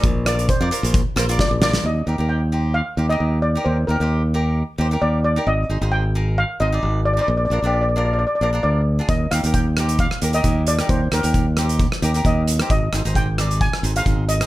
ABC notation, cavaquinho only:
X:1
M:4/4
L:1/16
Q:"Swing 16ths" 1/4=133
K:Eb
V:1 name="Cavaquinho"
z2 [FBd]2 z [FBd] [FBc]2 z2 [FBc] [FBd]2 z [FBd]2 | z2 [EGB] [EGB]2 z [EGc]2 z2 [EGc] [EGB]2 z2 [EGB]- | [EGB] z [EGB] [EGc]2 z [EGB]2 z2 [EGc] [EGB]2 z2 [EGB] | z2 [EAc] [EAc]2 z [EAB]2 z2 [EAc] [EAd]2 z2 [EAc] |
z2 [DFB] [DFG]2 z [DFB]2 z2 [DFB] [DFB]2 z2 [DFA] | z2 [EGB] [EGB]2 z [EGc]2 z2 [EGB] [EGB]2 z2 [EGB]- | [EGB] z [EGc] [EGB]2 z [EGc]2 z2 [EGB] [EGB]2 z2 [EGc] | z2 [EAc] [EAc]2 z [EAd]2 z2 [EAc] [EAc]2 z2 [EA] |]